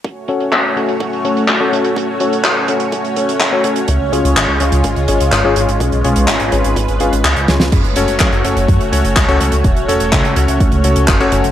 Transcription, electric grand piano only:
X:1
M:4/4
L:1/16
Q:1/4=125
K:F#m
V:1 name="Electric grand piano"
z2 [CFAc]4 [CFAc]2 z2 [CFAc]3 [CFAc] [CFAc] z | z2 [CFAc]4 [CFAc]2 z2 [CFAc]3 [CFAc] [CFAc] z | z2 [C^EGc]4 [CEGc]2 z2 [CEGc]3 [CEGc] [CEGc] z | z2 [C^EGc]4 [CEGc]2 z2 [CEG^e] z3 [CEGc] z |
z2 [CFAc]4 [CFAc]2 z2 [CFAc]3 [CFAc] [CFAc] z | z2 [CFAc]4 [CFAc]2 z2 [CFAc]3 [CFAc] [CFAc] z |]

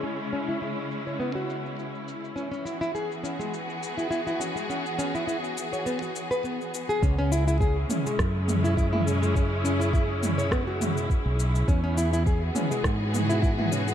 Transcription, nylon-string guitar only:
X:1
M:4/4
L:1/16
Q:"Swing 16ths" 1/4=103
K:C#m
V:1 name="Nylon-string guitar"
C z C E E z2 c B, F4 z3 | C C E E G z C G, z3 E E E C G, | C z C E E z2 c B, F z B B, z2 G | C C E E G z C G, z3 E E E C G, |
C z C E E z2 c B, F4 z3 | C C E E G z C G, z3 E E E C G, |]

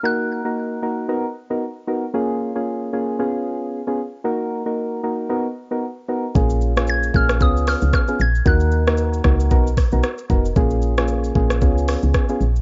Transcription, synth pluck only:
X:1
M:4/4
L:1/8
Q:"Swing 16ths" 1/4=114
K:Ebm
V:1 name="Synth pluck"
g'3 z4 z | z8 | z8 | z2 a' f' e' f' f' a' |
g'3 z4 z | z8 |]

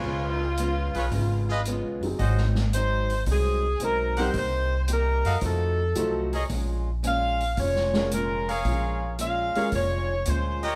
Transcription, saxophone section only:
X:1
M:4/4
L:1/8
Q:"Swing" 1/4=112
K:Bbm
V:1 name="Saxophone section"
F6- F z | z2 c2 A2 B c | c2 B2 =A3 z | z2 f2 d2 B A |
z2 f2 d2 c B |]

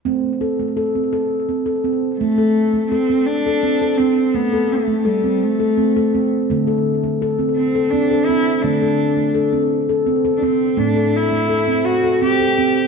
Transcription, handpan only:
X:1
M:6/8
L:1/16
Q:3/8=56
K:Am
V:1 name="Handpan"
C2 A A, A C A2 C A C2 | A, A2 A, A C2 A C A C2 | A, A2 A, A C2 A C A C2 | A, A2 A, A C2 A C A C2 |
A, A2 A, A C2 A C A C2 | A, A2 A, A C2 A C A C2 |]
V:2 name="Handpan" clef=bass
A,12 | z12 | z12 | D,12 |
D,12 | A,,12 |]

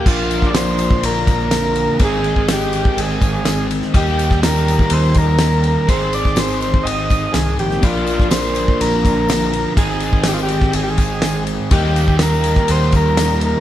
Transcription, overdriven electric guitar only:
X:1
M:4/4
L:1/8
Q:1/4=124
K:Bbmix
V:1 name="Overdriven electric guitar"
[B,,D,F,B,DB]8 | [A,CEA]8 | [E,G,B,EG]8 | [A,,E,A,CEA]8 |
[B,,D,F,B,DB]8 | [A,,E,A,CEA]8 | [E,G,B,EG]8 |]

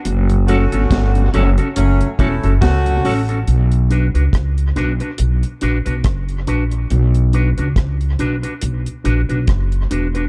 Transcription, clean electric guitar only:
X:1
M:4/4
L:1/16
Q:"Swing 16ths" 1/4=70
K:F#phr
V:1 name="Clean electric guitar"
z2 [CFA] [CFA] z2 [CFA] [CFA] z2 [CFA] [CFA] z2 [CFA] [CFA] | [K:Bm] z2 [DFB] [DFB] z2 [DFB] [DFB] z2 [DFB] [DFB] z2 [DFB] z | z2 [DFB] [DFB] z2 [DFB] [DFB] z2 [DFB] [DFB] z2 [DFB] [DFB] |]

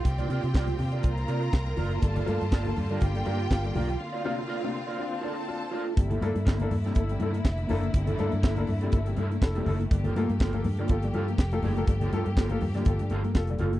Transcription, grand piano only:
X:1
M:4/4
L:1/16
Q:"Swing 16ths" 1/4=122
K:Cmix
V:1 name="Grand piano"
z16 | [G,,D,] z [A,B,F] [B,F] z [A,B,F] z [G,,D,] [B,F] [G,,D,] [B,F] z [B,F] [G,,D,] [B,F] z | z2 [C,B,DF] [DF] z [C,B,DF] z2 [DF] z [DF] z [DF] z [DF] z | [C,G,] z [B,DEA] [EA] z [B,DEA] z [C,G,] [EA] [C,G,] [EA] z3 [B,DEA] z |
[C,G,] z [B,DEA] [EA] z [B,DEA] z [C,G,] [EA] [C,G,] [EA] z [EA] [C,G,] [EA] z | [G,,D,] z [B,FA] [FA] z [B,FA] z [G,,D,] [FA] [G,,D,] [FA] z2 [B,FA] [G,,D,] [B,FA] | [G,,D,] z [B,FA] [FA] z [B,FA] z [G,,D,] [FA] [G,,D,] [FA] z [FA] [G,,D,] [FA] z |]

